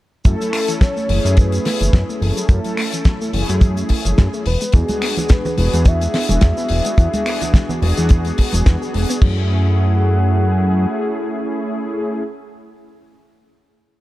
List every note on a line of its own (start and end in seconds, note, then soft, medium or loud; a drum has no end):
0.24 0.36 F#2 loud
0.24 0.30 E3 medium
0.24 1.06 A3 medium
0.24 1.06 C#4 medium
0.24 1.07 E4 medium
0.24 0.83 A4 loud
0.24 1.07 A4 medium
0.24 kick loud
0.24 closed hi-hat medium
0.24 shaker medium
0.41 0.51 F#3 medium
0.41 closed hi-hat medium
0.41 shaker medium
0.53 0.58 A3 medium
0.53 finger snap medium
0.53 open hi-hat loud
0.68 0.73 E3 medium
0.68 closed hi-hat medium
0.68 shaker medium
0.81 0.94 F#3 loud
0.81 1.39 C#5 loud
0.81 kick loud
0.81 snare loud
0.81 closed hi-hat medium
0.81 shaker medium
0.97 1.07 A3 loud
0.97 shaker medium
1.08 1.20 F#1 loud
1.08 1.22 E3 medium
1.08 2.46 A3 medium
1.08 2.46 C#4 medium
1.08 2.47 E4 medium
1.08 2.47 G#4 medium
1.08 open hi-hat loud
1.25 1.59 F#2 loud
1.25 1.29 F#3 medium
1.25 closed hi-hat medium
1.25 shaker medium
1.37 1.43 E3 medium
1.37 2.23 B4 loud
1.37 kick loud
1.37 closed hi-hat medium
1.37 shaker medium
1.52 1.63 F#3 medium
1.52 closed hi-hat medium
1.52 shaker medium
1.65 1.71 A3 medium
1.65 snare medium
1.65 open hi-hat loud
1.81 1.89 F#1 medium
1.81 1.85 E3 medium
1.81 closed hi-hat medium
1.81 shaker medium
1.93 2.04 F#2 loud
1.93 2.06 F#3 loud
1.93 kick loud
1.93 snare loud
1.93 closed hi-hat medium
1.93 shaker medium
2.09 2.19 A3 loud
2.09 shaker soft
2.21 2.32 F#1 medium
2.21 2.34 E3 medium
2.21 3.34 A4 loud
2.21 open hi-hat medium
2.37 2.41 F#3 medium
2.37 closed hi-hat medium
2.37 shaker medium
2.49 2.60 F#2 loud
2.49 2.55 E3 medium
2.49 3.30 A3 medium
2.49 3.30 C#4 medium
2.49 3.31 E4 medium
2.49 3.31 A4 medium
2.49 kick loud
2.49 closed hi-hat medium
2.49 shaker medium
2.64 2.75 F#3 medium
2.64 closed hi-hat medium
2.64 shaker medium
2.77 2.83 A3 medium
2.77 finger snap medium
2.77 open hi-hat loud
2.92 2.97 E3 medium
2.92 closed hi-hat medium
2.92 shaker medium
3.05 3.19 F#3 loud
3.05 kick loud
3.05 snare loud
3.05 closed hi-hat medium
3.05 shaker medium
3.22 3.31 A3 loud
3.22 shaker medium
3.33 3.44 F#1 loud
3.33 3.47 E3 medium
3.33 4.44 A3 medium
3.33 4.44 C#4 medium
3.33 4.45 E4 medium
3.33 4.45 G#4 medium
3.33 open hi-hat loud
3.49 3.84 F#2 loud
3.49 3.53 F#3 medium
3.49 closed hi-hat medium
3.49 shaker medium
3.61 3.67 E3 medium
3.61 kick loud
3.61 closed hi-hat medium
3.61 shaker medium
3.77 3.88 F#3 medium
3.77 closed hi-hat medium
3.77 shaker soft
3.89 3.95 A3 medium
3.89 kick medium
3.89 open hi-hat loud
4.05 4.14 F#1 medium
4.05 4.10 E3 medium
4.05 closed hi-hat medium
4.05 shaker medium
4.18 4.29 F#2 loud
4.18 4.31 F#3 loud
4.18 kick loud
4.18 snare loud
4.18 closed hi-hat medium
4.18 shaker medium
4.34 4.43 A3 loud
4.34 shaker medium
4.46 4.57 E1 medium
4.46 4.59 E3 medium
4.46 4.76 B4 loud
4.46 open hi-hat medium
4.61 4.66 G#3 medium
4.61 closed hi-hat medium
4.61 shaker medium
4.72 4.85 E2 loud
4.72 4.79 E3 medium
4.72 5.54 B3 medium
4.72 5.55 D4 medium
4.72 5.55 F#4 medium
4.72 5.32 G#4 loud
4.72 5.55 G#4 medium
4.72 kick loud
4.72 closed hi-hat medium
4.72 shaker medium
4.88 5.00 G#3 medium
4.88 closed hi-hat medium
4.88 high conga loud
4.88 shaker medium
5.02 5.07 B3 medium
5.02 finger snap medium
5.02 open hi-hat loud
5.16 5.22 E3 medium
5.16 closed hi-hat medium
5.16 high bongo medium
5.16 low conga medium
5.16 shaker medium
5.29 5.43 G#3 loud
5.29 5.58 B4 loud
5.29 kick loud
5.29 snare loud
5.29 closed hi-hat medium
5.29 shaker medium
5.45 5.56 B3 loud
5.45 high bongo medium
5.45 low conga medium
5.45 shaker soft
5.57 5.69 E1 loud
5.57 5.71 E3 medium
5.57 6.94 B3 medium
5.57 6.95 D4 medium
5.57 6.95 F#4 medium
5.57 6.95 G#4 medium
5.57 5.89 B4 loud
5.57 open hi-hat loud
5.57 high conga medium
5.73 6.08 E2 loud
5.73 5.78 G#3 medium
5.73 closed hi-hat medium
5.73 shaker medium
5.85 5.91 E3 medium
5.85 8.67 E5 loud
5.85 kick loud
5.85 closed hi-hat medium
5.85 shaker medium
6.01 6.12 G#3 medium
6.01 closed hi-hat soft
6.01 shaker medium
6.14 6.19 B3 medium
6.14 snare medium
6.14 open hi-hat loud
6.29 6.38 E1 medium
6.29 6.34 E3 medium
6.29 closed hi-hat medium
6.29 high conga loud
6.29 shaker medium
6.41 6.53 E2 loud
6.41 6.55 G#3 loud
6.41 kick loud
6.41 snare loud
6.41 closed hi-hat medium
6.41 shaker medium
6.57 6.68 B3 loud
6.57 shaker soft
6.69 6.81 E1 medium
6.69 6.83 E3 medium
6.69 open hi-hat loud
6.85 6.90 G#3 medium
6.85 closed hi-hat medium
6.85 shaker medium
6.97 7.09 E2 loud
6.97 7.03 E3 medium
6.97 7.79 B3 medium
6.97 7.79 D4 medium
6.97 7.79 F#4 medium
6.97 7.80 G#4 medium
6.97 kick loud
6.97 closed hi-hat medium
6.97 shaker medium
7.13 7.24 G#3 medium
7.13 closed hi-hat medium
7.13 high conga loud
7.13 shaker soft
7.26 7.31 B3 medium
7.26 finger snap medium
7.26 open hi-hat loud
7.41 7.46 E3 medium
7.41 closed hi-hat medium
7.41 high bongo medium
7.41 low conga medium
7.41 shaker medium
7.54 7.67 G#3 loud
7.54 kick loud
7.54 snare loud
7.54 closed hi-hat medium
7.54 shaker medium
7.69 7.80 B3 loud
7.69 high bongo medium
7.69 low conga medium
7.69 shaker medium
7.81 7.93 E1 loud
7.81 7.95 E3 medium
7.81 9.19 B3 medium
7.81 9.19 D4 medium
7.81 9.20 F#4 medium
7.81 9.20 G#4 loud
7.81 open hi-hat loud
7.81 high conga medium
7.97 8.32 E2 loud
7.97 8.02 G#3 medium
7.97 closed hi-hat medium
7.97 shaker medium
8.09 8.15 E3 medium
8.09 kick loud
8.09 closed hi-hat medium
8.09 shaker medium
8.25 8.36 G#3 medium
8.25 closed hi-hat soft
8.25 shaker soft
8.38 8.47 G#3 medium
8.38 kick medium
8.38 open hi-hat loud
8.53 8.62 E1 medium
8.53 8.60 E3 medium
8.53 closed hi-hat medium
8.53 high conga medium
8.53 shaker medium
8.66 8.77 E2 loud
8.66 8.75 G#3 medium
8.66 kick loud
8.66 snare loud
8.66 closed hi-hat medium
8.66 shaker medium
8.82 8.92 G#4 medium
8.82 shaker medium
8.94 9.05 E1 medium
8.94 9.03 G#3 medium
8.94 open hi-hat loud
9.10 9.14 B3 loud
9.10 closed hi-hat medium
9.10 shaker medium
9.21 10.86 F#2 loud
9.21 9.48 E3 loud
9.21 12.22 A3 medium
9.21 12.22 C#4 medium
9.21 12.23 E4 medium
9.21 12.23 G#4 loud
9.21 12.23 F#5 loud
9.21 kick loud
9.21 crash medium